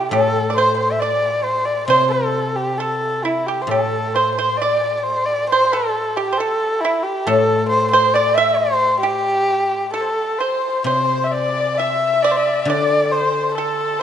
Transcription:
Already playing: C3 G4
0.11 A2 A4
0.50 D5
0.56 C5
0.78 C5
0.92 E5
1.00 D5
1.44 C5
1.65 D5
1.88 C3 C5
2.11 A4
2.56 G4
2.78 A4
3.24 E4
3.46 G4
3.62 C5
3.67 A2 A4
3.71 A4
4.14 C5
4.35 C5
4.57 D5
4.62 D5
4.97 D5
5.03 C5
5.26 D5
5.50 C5
5.72 A4
6.16 G4
6.32 C5
6.38 A4
6.81 E4
7.03 G4
7.26 A2 A4
7.69 C5
7.92 C5
8.14 D5
8.35 E5
8.57 C5
9.00 G4
9.94 A4
10.01 C5
10.10 A4
10.39 C5
10.84 C3 C5
10.88 C5
11.24 E5
11.31 D5
11.78 E5
12.22 D5
12.31 C5
12.36 D5
12.63 D3 D5 E5
12.69 D5
13.12 C5
13.49 C5
13.55 A4

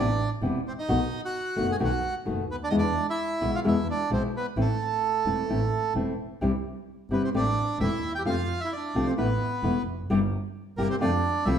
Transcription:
Already playing: A1 D5
0.00 D4
0.42 E1 C3 E3 B3 C4 E4
0.68 C4 C5
0.79 D#4 D#5
0.88 B1 B2 D#3 A3 B3 F#4
1.25 F#4 F#5
1.56 F#1 B2 D#3 A3 B3 F#4
1.71 G#4 G#5
1.79 B1 B2 D#3 A3 B3 F#4
1.84 F#4 F#5
2.25 F#1 B2 D#3 A3 B3 F#4
2.50 D2 B3 B4
2.63 D4 D5
2.70 E2 B2 E3 G#3 B3 E4 D#5
2.78 D4 D5
3.09 E4 E5
3.41 B1 B2 E3 G#3 B3 E4
3.55 F4 F5
3.65 E2 B2 E3 G#3 B3 E4 E5
3.90 D4 D5
4.10 B1 B2 E3 G#3 B3 C4 E4 C5
4.36 B3 B4
4.56 A1 E3 A3 C4 E4
4.61 A3 A4
5.26 E1 E3 A3 C4 E4
5.49 A1 E3 A3 C4 E4
5.95 E1 E3 A3 C4 E4
6.41 C2 C3 E3 G3 C4 E4
7.10 G1 C3 E3 G3 B3 C4 E4 B4
7.24 C4 C5
7.34 A1 E3 A3 C4 E4 D5
7.38 D4
7.80 E1 E3 A3 C4 E4 E5
8.02 D#2
8.15 G4 G5
8.25 F2 C3 F3 A3 C4 F4 F5
8.30 F4
8.61 E4 E5
8.73 D5
8.77 D4
8.95 C2 C3 F3 A3 C4 F4
9.06 C4 C5
9.17 A1 E3 A3 B3 E4 B4
9.63 E1 E3 A3 B3 E4
9.86 F1
10.09 G1 C3 G3 A#3 E4 G4
10.77 G1 C3 G3 A#3 E4 G4 A#4
10.90 C4 C5
11.00 F2 C3 F3 A3 C4 D4 F4 D5
11.45 C2 C3 F3 A3 C4 E4 F4 E5

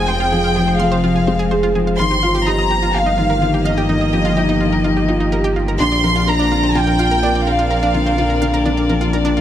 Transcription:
Already playing: F1 F3 G#3 C4 G#4 C5 F5
0.08 C5 G5
0.20 F4
0.32 F3 G#4
0.44 F5
0.56 F3 G#4
0.68 C5
0.80 F3 F5 C6
0.92 C5
1.04 F3 F4
1.16 G#5
1.27 G#3 C5
1.39 G#4
1.51 G#4 C5
1.63 F4
1.75 F3 G#4
1.87 F5
1.99 G1 D#3 F4 C6
2.11 G4
2.23 F4 F5
2.35 A#3 G4
2.46 D#4 G4 A#5
2.58 D#5
2.71 G4
2.83 F4
2.94 G4 F5
3.06 D#4
3.18 D#3 F4
3.30 A#4
3.36 G4
3.42 D#3 F4
3.54 G4
3.65 D#3 D#5 F5
3.70 D#5
3.77 G4
3.89 D#3 D#4
4.01 D#5
4.13 F3 G4
4.25 F4
4.37 D#4 G4
4.49 D#4
4.60 D#3 F4
4.72 A#4
4.84 D#3 F4
4.97 G4
5.08 D#4 F4
5.20 D#4
5.32 G4 A#4
5.44 G4
5.56 F4
5.68 A#4
5.80 A#1 D3 D4 C6
5.92 D5
6.04 F3 A#4
6.08 C4 D5
6.16 F4
6.27 D4 A#4 A#5
6.39 D4
6.51 D3 F4
6.63 C5
6.75 D3 F4 G5
6.87 A#4
6.99 F4 F5
7.09 A#4
7.22 D4 A#4
7.35 D5
7.47 A#4 F5
7.59 F4
7.71 A#4
7.83 D4
7.94 D3 F4
8.06 C5
8.18 D3 F4
8.30 A#4
8.42 D3 F5
8.54 A#4
8.66 D3 D4
8.77 D5
8.89 F3 A#4
9.01 F4
9.13 D4 A#4
9.25 D4
9.37 D3 F4

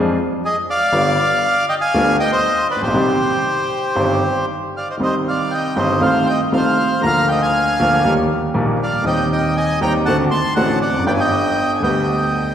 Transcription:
Already playing: F2 F3 G#3 D4 G#4
0.45 G#4 D#5
0.70 D5 F5
0.92 G1 G2 D3 G3 B3 F4
1.69 D#5 G5
1.81 F5 G#5
1.94 D2 D3 G3 B3 F4
2.20 D#5 G5
2.32 C5 D#5
2.71 B4 D5
2.76 A1
2.82 A#1 G4 C5
2.88 B1
2.94 C2 C3 D#3 G3 C4 G4
3.95 G1 G2 D#3 G3 C4 G4
4.77 D5 F5
4.90 C5 D#5
4.97 C2 C3 D#3 G3 C4
5.02 G4 C5 D#5
5.28 D5 F5
5.51 D#5 G5
5.76 G1 G2 D#3 G3 C4 G4 C5 D#5
6.01 C2 C3 D#3 A3 C4 F4 F5
6.06 C5
6.26 D#5 G5
6.52 C2 C3 D#3 A3 C4 F4 F5
6.57 C5
7.01 D2 D3 F3 A#3 F4 A#5
7.06 F5
7.28 D#5 G5
7.42 F5 G#5
7.80 D2 D3 F3 A#3 F4
8.04 D#2 D#3 G3 A#3 G4
8.54 A#1 A#2 D#3 G3 A#3 G4
8.83 D5 F5
9.03 D#2 D#3 G3 C4 D#5
9.07 G4 G5
9.32 D#5 G5
9.57 D#5 G#5
9.81 D#2 D#3 G3 C4 G4 G5 A#5
10.06 D2 D3 A3 C4 F#4 F#5 A5
10.31 A5 C6
10.56 A1 A2 D3 A3 C4 F#4 F#5 A5
10.81 D5 F#5
10.89 E2
10.94 F2
10.99 F#2
11.05 G1 G2 D3 G3 B3 G4 D5 G5
11.14 G#5
11.20 D#5 G5
11.75 G#5
11.80 D2 D3 G3 B3 G4 D#5 G5

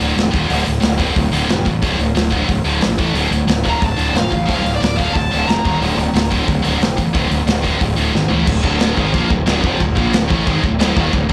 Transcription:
0.00 D1 D2 A2 D3, open hi-hat
0.15 E1 D2 A2, snare, open hi-hat
0.31 D#1 D#2 A#2 D#3, kick, open hi-hat
0.48 D1 D2 A2 D3, open hi-hat
0.64 D1 D2 A2, open hi-hat
0.80 D1 D2 A2, snare, open hi-hat
0.98 D2 A2 D3, kick, open hi-hat
1.15 D1 D2 A2, kick, open hi-hat
1.32 D1 D2 A2 D3, open hi-hat
1.48 F1 D2 A2, snare, open hi-hat
1.65 A1 D2 A2, kick, open hi-hat
1.82 D1 D2 A2 D3, kick, open hi-hat
1.98 D1 D2 A2, open hi-hat
2.15 D1 D2 A2, snare, open hi-hat
2.30 D2 A2 D3, kick, open hi-hat
2.47 D1 D2 A2, kick, open hi-hat
2.64 D1 D2 A2 D3, open hi-hat
2.81 A#1 D2 A2, snare, open hi-hat
2.98 A1 A2 E3 A3, kick, open hi-hat
3.14 D1 D2 A2 D3, open hi-hat
3.31 D1 D2 A2, open hi-hat
3.47 D1 D2 A2, snare, open hi-hat
3.64 D2 A2 D3, kick, open hi-hat
3.69 A#5
3.81 D1 D2 A2, kick, open hi-hat
3.85 A5
3.97 D1 D2 A2 D3, open hi-hat
4.14 F1 D2 A2 F5, snare, open hi-hat
4.30 A1 D2 A2, kick, open hi-hat
4.46 D1 D2 A2 D3, kick, open hi-hat
4.50 F5
4.63 D1 D2 A2, open hi-hat
4.75 D5
4.80 D1 D2 A2, snare, open hi-hat
4.97 D2 A2 D3 F5, kick, open hi-hat
5.13 D1 D2 A2 A5, kick, open hi-hat
5.31 D1 D2 A2 D3, open hi-hat
5.48 F1 D2 A2 A#5, snare, open hi-hat
5.64 D#1 D#2 A#2 D#3, kick, open hi-hat
5.80 D1 D2 A2 D3, open hi-hat
5.97 D1 D2 A2, open hi-hat
6.13 D1 D2 A2, snare, open hi-hat
6.31 D2 A2 D3, kick, open hi-hat
6.47 D1 D2 A2, kick, open hi-hat
6.63 D1 D2 A2 D3, open hi-hat
6.80 F1 D2 A2, snare, open hi-hat
6.97 A1 D2 A2, kick, open hi-hat
7.13 D1 D2 A2 D3, kick, open hi-hat
7.31 D1 D2 A2, open hi-hat
7.46 D1 D2 A2, snare, open hi-hat
7.62 D2 A2 D3, kick, open hi-hat
7.80 D1 D2 A2, kick, open hi-hat
7.96 D1 D2 A2 D3, open hi-hat
8.13 G#1 D2 A2, snare
8.28 A1 A2 E3 A3, floor tom
8.46 D1 D2 A2, kick, crash, china
8.63 D1 D2 A2 D3, kick
8.80 snare, china
8.96 G#1 G#2 D#3 G#3, kick
9.13 A#1 A#2 F3 A#3, kick, china
9.29 D1 D2 A2, kick
9.46 D1 D2 A2 D3, snare, china
9.63 F1 F2 C3 F3, kick
9.80 D1 D2 A2, kick, china
9.96 A#1 A#2 F3 A#3, kick
10.13 D1 D2 A2, snare, china
10.28 A1 A2 E3 A3, kick
10.46 G#1 G#2 D#3 G#3, kick, china
10.62 D1 D2 A2, kick
10.79 D1 D2 A2 D3, snare, china
10.96 D#1 D#2 A#2 D#3, kick
11.13 D1 D2 A2, kick, china
11.29 D2 A2, kick

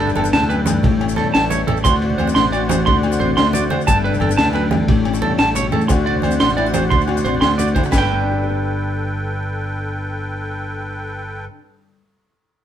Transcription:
Already playing: G1 G2 D3 G4 A4 B4 G5
0.00 D4, ride
0.07 low conga, maracas
0.15 G1 B3 A4, ride, high conga, low agogo
0.24 muted conga, maracas
0.32 D2 E2 A5, snare, ride, maracas
0.40 low conga
0.50 F#2 B4, ride, low agogo, maracas
0.66 G2, ride, muted conga, high conga, low conga, low agogo, maracas
0.83 A1 A2 G4 C#5, kick, ride, low conga
1.01 C#4, ride, low agogo
1.09 maracas
1.16 E2 G3 A4, snare, ride, high conga, low conga
1.24 low conga
1.34 A1 E3 A5, snare, ride, low agogo
1.50 C#4 C#5, ride, muted conga, maracas
1.59 low conga
1.67 A1 G4 A4, ride, high conga, low conga, low agogo
1.77 maracas
1.84 D2 D3 F#4 C5 D5 F#5 C6, kick, ride, muted conga, low agogo, maracas
2.02 F#4, ride
2.10 low conga
2.18 D2 C4 C5, ride, high conga, low agogo
2.27 muted conga, maracas
2.35 A1 A3 C6, snare, ride, maracas
2.44 low conga
2.52 F#4 D5, ride, low agogo, maracas
2.69 F#4 C5, ride, muted conga, high conga, low conga, low agogo, maracas
2.86 D2 D3 F#4 C6, kick, ride, low conga
3.03 F#4, ride, low agogo
3.12 muted conga, maracas
3.20 A1 C4 C5, ride, high conga, low conga
3.28 low conga
3.36 D2 A3 C6, snare, ride, low agogo
3.53 F#4 D5, ride, muted conga, maracas
3.62 low conga
3.70 D3 F#4 C5, ride, high conga, low conga, low agogo
3.81 maracas
3.87 G1 G2 G4 A4 B4 G5 A5, kick, ride, muted conga, low agogo, maracas
4.04 D4 B4, ride
4.12 low conga, maracas
4.20 G1 B3 A4, ride, high conga, low agogo
4.29 muted conga, maracas
4.37 D2 E2 A5, snare, ride
4.46 low conga
4.53 F#2 B4, ride, low agogo
4.71 G2, ride, muted conga, high conga, low conga, low agogo
4.88 A1 A2 G4 C#5, kick, ride, low conga
5.05 C#4, ride, low agogo
5.13 muted conga, maracas
5.22 E2 G3 A4, ride, high conga, low conga
5.30 low conga
5.38 A1 A5, muted nylon-string guitar stroke, snare, ride, low agogo
5.55 B2 C#5, ride, muted conga, maracas
5.64 low conga
5.72 A2 C#3 A4, ride, high conga, low conga, low agogo
5.81 maracas
5.88 D2 D3 F#4 C5 D5 F#5, muted clean electric guitar stroke, kick, ride, muted conga, low agogo, maracas
6.06 F#4 D5, ride, low conga
6.14 low conga
6.22 D2 C4 C5, ride, high conga, low agogo, maracas
6.31 muted conga, maracas
6.40 A1 A3 C6, snare, ride, maracas
6.48 low conga, maracas
6.57 E4 D5, ride, low agogo
6.66 F#4
6.74 F#4 C5, ride, muted conga, high conga, low conga, low agogo, maracas
6.83 low conga
6.90 D2 D3 F#4 C6, kick, ride, low conga
7.00 low conga, maracas
7.08 F#4, ride, low conga, low agogo
7.17 muted conga, low conga, maracas
7.25 A1 C4 C5, ride, high conga, maracas
7.35 low conga
7.41 D2 A3 C6, snare, ride, low agogo
7.52 low conga
7.58 F#4 D5, ride, muted conga, maracas
7.67 maracas
7.75 D3 E4 C5, kick, ride, high conga, low conga, low agogo, maracas
7.83 F#4, muted clean electric guitar stroke, maracas
7.91 G1 G2 A4 B4 G5, kick, snare, splash, muted conga, low agogo, maracas
7.98 D3 G5
8.12 B3
8.21 D4
8.31 G4
8.43 G4
8.49 B4

